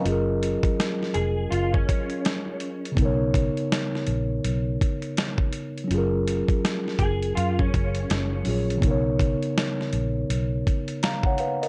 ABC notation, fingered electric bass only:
X:1
M:4/4
L:1/16
Q:"Swing 16ths" 1/4=82
K:Blyd
V:1 name="Fingered electric bass" clef=bass
F,,,3 z3 E,,,2 F,,,2 z6 | B,,,3 z3 A,,,2 B,,,2 z6 | F,,,3 z3 F,,,2 F,,2 F,,,2 F,,,2 A,,,2 | B,,,3 z3 A,,,2 B,,,2 z6 |]